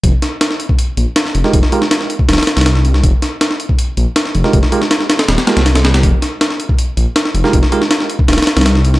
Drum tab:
HH |o---o---o---o---o---o---o---o---|o---o---o---o---ooooo-ooo---o---|o---o---o---o---o---o---o---o---|o---o---o---o-o-o-o-o-o-o-o-o-o-|
SD |----o---o-o-------------o-o---o-|--o---o-o-o-----ooooo-ooo-o---o-|----o---o-o-------------o-o---o-|--o---o-o-o-o-o-o-o-o-o-o-o-o-o-|
BD |o-------------o-----------------|o-------------o-----------------|o-------------o-----------------|o-------------------------------|

HH |o---o---o---o---o---o---o---o---|o---o---o---o---ooooo-ooo---o---|
SD |----o---o-o-------------o-o---o-|--o---o-o-o-----ooooo-ooo-o---o-|
BD |o-------------o-----------------|o-------------o-----------------|